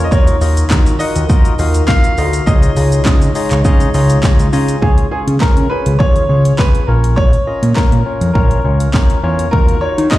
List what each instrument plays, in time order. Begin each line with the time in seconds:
Already playing: glass harmonica F4
0.04 grand piano D#5
0.11 analog synth bass D#2, glass harmonica D#4 F#4 A#4, tine electric piano D#4 F4 F#4 A#4 D#5, grand piano C#5, kick, shaker
0.27 closed hi-hat, shaker
0.41 analog synth bass D#2, tine electric piano D#4 F4 F#4 A#4 D#5, open hi-hat, shaker
0.57 closed hi-hat, shaker
0.70 analog synth bass D#3, tine electric piano D#4 F4 F#4 A#4 D#5, kick, snare, clap, shaker
0.86 closed hi-hat, shaker
0.99 tine electric piano D#4 F4 F#4 A#4 F#5, grand piano D#5, open hi-hat, shaker
1.16 analog synth bass D#2, closed hi-hat, shaker
1.29 tine electric piano D#4 F4 F#4 A#4 D#5, kick, shaker
1.45 closed hi-hat, shaker
1.59 analog synth bass D#2, tine electric piano D#4 F4 F#4 A#4 F5, open hi-hat, shaker
1.75 closed hi-hat, shaker
1.87 tine electric piano D#4 F4 F#4 A#4 D#5, grand piano F5, kick, snare, clap, shaker
2.04 closed hi-hat, shaker
2.18 analog synth bass D2, tine electric piano D#4 F4 F#4 A#4 D#5, open hi-hat, shaker
2.33 closed hi-hat, shaker
2.46 analog synth bass C#2, glass harmonica G#3 C#5, tine electric piano D#4 F4 G#4 C#5 D#5, grand piano D#5, kick, shaker
2.63 closed hi-hat, shaker
2.77 analog synth bass C#2, tine electric piano D#4 F4 G#4 C#5 D#5, open hi-hat, shaker
2.92 closed hi-hat, shaker
3.05 analog synth bass C#3, tine electric piano D#4 F4 G#4 C#5 D#5, kick, snare, clap, shaker
3.22 closed hi-hat, shaker
3.35 tine electric piano D#4 F4 G#4 C#5 D#5, open hi-hat, shaker
3.51 analog synth bass C#2, clap, closed hi-hat, shaker
3.65 analog synth bass C#3, tine electric piano D#4 F4 G#4 C#5 D#5, kick, shaker
3.80 closed hi-hat, shaker
3.94 analog synth bass C#2, tine electric piano D#4 F4 G#4 C#5 D#5, open hi-hat, shaker
4.10 closed hi-hat, shaker
4.23 analog synth bass C#2, tine electric piano D#4 F4 G#4 C#5 D#5, kick, snare, clap, shaker
4.39 analog synth bass C#2, closed hi-hat, shaker
4.53 analog synth bass C#3, tine electric piano D#4 F4 G#4 C#5 D#5 G#5, open hi-hat, shaker
4.69 closed hi-hat, shaker
4.82 analog synth bass C#2, tine electric piano C#4 F4 G#4 C#5, grand piano G#4, kick
4.98 closed hi-hat
5.11 tine electric piano C#4 F4 G#4 C#5, grand piano G#4
5.27 analog synth bass C#3, closed hi-hat
5.40 analog synth bass C#3, tine electric piano C#4 F4 G#4 C#5, grand piano A#4, kick, snare, clap
5.57 analog synth bass C#3, closed hi-hat
5.70 tine electric piano C#4 F4 G#4 C#5, grand piano B4
5.86 analog synth bass C#2, closed hi-hat
5.99 analog synth bass D#2, tine electric piano C#4 F4 G#4 C#5, grand piano C#5, kick
6.16 closed hi-hat
6.29 analog synth bass C#2, tine electric piano C#4 F4 G#4 C#5
6.45 closed hi-hat
6.58 tine electric piano C#4 F4 G#4 C#5, grand piano B4, kick, snare, clap
6.75 closed hi-hat
6.87 analog synth bass A#1, tine electric piano C#4 F4 A#4 C#5, grand piano A#4
7.04 closed hi-hat
7.16 grand piano C#5, kick
7.33 closed hi-hat
7.47 tine electric piano C#4 F4 A#4 D#5
7.62 analog synth bass A#2, closed hi-hat
7.75 analog synth bass A#2, tine electric piano C#4 F4 A#4 C#5, grand piano A#4, kick, snare, clap
7.92 analog synth bass A#2, closed hi-hat
8.06 tine electric piano C#4 F4 A#4 C#5
8.21 analog synth bass F2, closed hi-hat
8.33 analog synth bass A#1, tine electric piano C#4 F4 A#4 C#5, grand piano A#4, kick
8.51 closed hi-hat
8.64 analog synth bass C#2, tine electric piano C#4 F4 A#4 C#5
8.80 closed hi-hat
8.93 tine electric piano C#4 F4 A#4 C#5, kick, snare, clap
9.10 closed hi-hat
9.23 analog synth bass E2, tine electric piano C#4 F4 A#4 C#5
9.39 closed hi-hat
9.51 analog synth bass D#2, tine electric piano D#4 F4 F#4 A#4, grand piano A#4, kick
9.68 closed hi-hat
9.81 tine electric piano D#4 F4 F#4 C#5, grand piano C#5
9.98 analog synth bass D#3, closed hi-hat
10.10 analog synth bass D#3, tine electric piano D#4 F4 F#4 C#5, grand piano D#5, kick, snare, clap